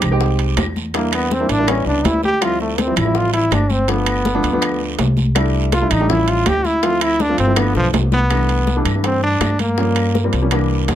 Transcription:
0.01 C2, low conga, high timbale, short guiro, claves
0.11 G#3 C4 D#4 G4
0.20 high bongo, high conga, long guiro
0.39 high bongo, high conga, high timbale
0.56 E2, high bongo, low bongo, high conga, high timbale, low timbale, short guiro, claves
0.76 high bongo, high conga, short guiro
0.94 G3 A#3 D4 E4, high bongo, high conga, high timbale, long guiro
1.12 B3, high bongo, high conga, high timbale, claves
1.30 C4, high bongo, high conga, low timbale, short guiro
1.40 G3 A#3 D4 E4
1.49 A1 D4, high conga, high timbale, short guiro
1.58 G3 A#3 D4 E4
1.67 G3 B3 C#4 E4, high bongo, high conga, high timbale, long guiro, claves
1.85 C#2 D4, high bongo, high conga
2.04 D2 E4, high bongo, low bongo, high conga, high timbale, low timbale, short guiro
2.23 G4, high bongo, high conga, short guiro
2.41 F3 G3 C4 E4 F4, high bongo, high conga, high timbale, long guiro, claves
2.60 A3, high bongo, high conga
2.78 C4, high bongo, high conga, high timbale, low timbale, short guiro
2.86 F3 G3 C4 E4
2.96 A1 E4, low conga, high timbale, short guiro, claves
3.05 F3 G3 C4 E4
3.15 F4, high bongo, high conga, long guiro
3.33 E4, high bongo, high conga, high timbale
3.51 G1 D4, high bongo, low bongo, high conga, high timbale, low timbale, short guiro, claves
3.70 C4, high bongo, high conga, short guiro
3.88 F3 A3 B3 D4, high bongo, high timbale, long guiro
4.06 high bongo, high conga, high timbale, claves
4.25 high bongo, high conga, low timbale, short guiro
4.34 F3 A3 B3 D4
4.43 D2, high conga, high timbale, short guiro
4.52 F3 A3 B3 D4
4.62 high bongo, high conga, high timbale, long guiro, claves
4.81 high bongo, high conga
4.98 C2, high bongo, low bongo, high conga, high timbale, low timbale, short guiro
5.17 high bongo, high conga, short guiro
5.35 G3 A3 D4 E4, high bongo, high conga, high timbale, long guiro, claves
5.54 high bongo, high conga
5.72 F4, high bongo, high conga, high timbale, low timbale, short guiro
5.81 G3 A3 D4 E4
5.90 A1 D#4, low conga, high timbale, short guiro, claves
6.00 G3 A3 D4 G4
6.09 F3 G3 C#4 E4, high bongo, high conga, low conga, long guiro
6.28 F4, high bongo, high conga, high timbale
6.46 D2 G4, high bongo, low bongo, high conga, high timbale, low timbale, short guiro, claves
6.64 E4, high bongo, high conga, short guiro
6.83 F3 A3 C4 E4 F4, high bongo, high conga, high timbale, long guiro
7.01 E4, high bongo, high conga, high timbale, claves
7.20 D4, high bongo, high conga, low timbale, short guiro
7.29 F3 A3 C4 F4
7.38 G1 C4, high conga, high timbale, short guiro
7.47 F3 A3 C4 E4
7.56 F3 A3 B3 D4, high bongo, high conga, high timbale, long guiro, claves
7.74 B1 F3, high bongo, high conga
7.93 C2, low bongo, high conga, high timbale, low timbale, short guiro
8.12 B3, low bongo, high conga, short guiro
8.30 E3 G3 A3 D4, high bongo, high conga, high timbale, long guiro, claves
8.49 high conga, high timbale
8.67 high bongo, high conga, low timbale, short guiro
8.76 E3 G3 A3 D4
8.85 G2, high bongo, high conga, high timbale, short guiro, claves
8.95 E3 G3 A3 D4
9.04 C4, high bongo, high conga, high timbale, long guiro
9.22 D4, high bongo, high conga
9.40 G2, high bongo, low bongo, high conga, high timbale, low timbale, short guiro, claves
9.59 A#3, high bongo, high conga, high timbale, short guiro
9.78 F3 G3 A#3 C#4, high bongo, long guiro
9.96 high bongo, high conga, high timbale, claves
10.14 high bongo, high conga, low timbale, short guiro
10.24 F3 G3 A#3 C4
10.33 C2, high conga, high timbale, short guiro
10.42 F3 G3 A#3 C#4
10.51 E3 G3 A#3 D4, high bongo, high conga, high timbale, long guiro, claves
10.70 high bongo, high conga
10.88 F2, high bongo, low bongo, high conga, high timbale, low timbale, short guiro

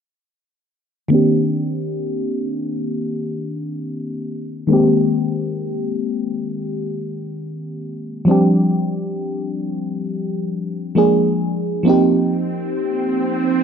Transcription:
1.08 D#3 A#3 C4
1.13 D4 G4
4.67 D#3 G#3 A#3
4.72 C4 G4
8.25 F3 G3 C4
8.29 D4 G4
10.95 F3 G#3 A#3 D4 G#4
11.83 F3 A#3 C4, swell
11.88 D#4 G4

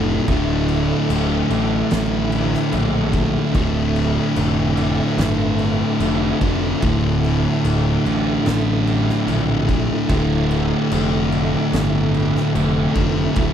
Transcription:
Already playing: F1 D2 A2 D3 A3 E4
0.28 D1 D2 A2 D3, kick, crash
0.68 crash
1.10 D1, crash
1.50 A1 A2 D3, crash
1.54 D2
1.91 A1, snare, crash
2.32 crash
2.54 snare
2.72 A#1 D2 A2 D3, crash
3.12 A2 D3, kick, crash
3.16 D2
3.54 D1 D2 A2 D3, kick, crash
3.96 crash
4.36 F1, crash
4.77 A2 D3, crash
4.81 D2
5.17 G1, snare, crash
5.59 crash
5.99 F1 D2 A2 D3, crash
6.40 F1 D2 A2 D3, kick, crash
6.81 D1 D2 A2, kick, crash
6.85 D3
7.24 crash
7.64 D1, crash
8.04 A1 D2 A2 D3, crash
8.46 A1, snare, crash
8.87 crash
9.09 snare
9.26 A#1 D2 A2, crash
9.30 D3
9.67 D2 A2 D3, kick, crash
10.08 D1 D2 A2 D3, kick, crash
10.51 crash
10.91 F1, crash
11.30 D2 A2 D3, crash
11.72 G1, snare, crash
12.14 crash
12.36 snare
12.53 F1 D2 A2 D3, crash
12.94 F1 A2 D3, kick, crash
12.99 D2
13.34 D1 D2 A2, kick, crash
13.38 D3

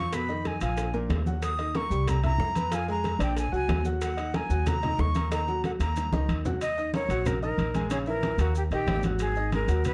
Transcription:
Already playing: F2 F3 F4 F5 C#6
0.13 B2 B3 B4 B5, high bongo, high conga, high timbale, maracas
0.29 D#3 D#4 D#5, high bongo, high conga, maracas
0.45 G#5, high bongo, high conga, high timbale, maracas
0.61 A#1 F3 F4 F5 G#5, high conga, high timbale, maracas
0.77 high bongo, high conga, high timbale, maracas
0.93 A#2 A#3 A#4, high conga, maracas
1.09 D#2, high bongo, low bongo, high conga, high timbale, low timbale, maracas
1.26 F#3 F#4 F#5, high bongo, high conga, maracas
1.42 D#6, high bongo, high conga, high timbale, maracas
1.58 D#4 D#5 D#6, high bongo, high conga, high timbale, maracas
1.74 A#3 A#4 A#5 C#6, high bongo, high conga, high timbale, maracas
1.90 C2 G3 G4 G5, maracas
2.08 A#5, high bongo, high conga, low conga, high timbale, maracas
2.23 E4 E5 A#5 E6, high bongo, high conga, low conga, high timbale, maracas
2.38 F2, high bongo, low bongo, high conga, maracas
2.55 B3 B4 B5, high bongo, high conga, high timbale, maracas
2.72 F3 F4 F5 G#5, high bongo, high conga, high timbale, maracas
2.88 G#3 G#4 G#5 A#5, high bongo, high conga, maracas
3.04 high bongo, high conga, high timbale, maracas
3.19 A#1 D4 D5 G5 D6, high conga, high timbale, maracas
3.37 G#5, high bongo, high conga, high timbale, maracas
3.52 C#2 F#3 F#4 F#5 G#5, high conga, maracas
3.68 D#2, high bongo, low bongo, high conga, high timbale, low timbale, maracas
3.85 F#3 F#4 F#5, high bongo, maracas
4.01 F#5, high bongo, high conga, high timbale, maracas
4.17 D#4 D#5 D#6, high bongo, high conga, high timbale, maracas
4.34 A#3 A#4 G#5 A#5, high bongo, high conga, high timbale, maracas
4.50 D#2 F#3 F#4 F#5, high conga, maracas
4.66 A#5, high bongo, high conga, low conga, high timbale, maracas
4.82 D#4 D#5 D#6, high bongo, high conga, low conga, high timbale, maracas
4.98 D#2 C#6, high bongo, low bongo, high conga, maracas
5.15 A#3 A#4 A#5, high bongo, high conga, high timbale, maracas
5.32 D#3 D#4 D#5 A#5, high bongo, high conga, high timbale, maracas
5.48 F#3 F#4 F#5, high bongo, high conga, maracas
5.64 F#5, high bongo, high conga, high timbale, maracas
5.79 D#2 A#3 A#4 A#5, high bongo, high conga, high timbale, maracas
5.96 low bongo, high conga, high timbale, maracas
6.12 C#2 D#3 D#4 D#5, low bongo, high conga, maracas
6.29 D#2, high conga, high timbale, maracas
6.45 F#3 F#4 F#5, low bongo, low conga, maracas
6.61 D#5, high conga, high timbale, maracas
6.78 D#4 D#5 D#6, high conga, maracas
6.94 A#3 A#4 C#5 A#5, high conga, high timbale, maracas
7.09 A#1 F#3 F#4 F#5, high conga, high timbale, maracas
7.26 A#4, high conga, low conga, high timbale, maracas
7.42 D#4 A#4 D#5 D#6, high conga, maracas
7.58 A#1, high conga, high timbale, maracas
7.74 G#3 G#4 G#5, high conga, high timbale, maracas
7.90 C#3 C#4 G#4 C#5, high conga, high timbale, maracas
8.06 E3 E4 A#4 E5, high conga, maracas
8.23 high conga, high timbale, maracas
8.38 D#2 A#3 F#4 A#4 A#5, high conga, high timbale, maracas
8.55 G4, high conga, maracas
8.71 A#1 D#3 D#4 G4 D#5, high conga, high timbale, maracas
8.87 G#1, high conga, high timbale, low timbale, maracas
9.03 F#3 F#4 F#5, high conga, high timbale, maracas
9.19 G#4, high conga, high timbale, maracas
9.36 D#4 D#5 D#6, high conga, maracas
9.52 G#3 G#4 A#4 G#5, high conga, high timbale, maracas
9.68 D#2 F#3 F#4 F#5, high conga, high timbale, maracas
9.84 B4, high conga, low conga, high timbale, maracas

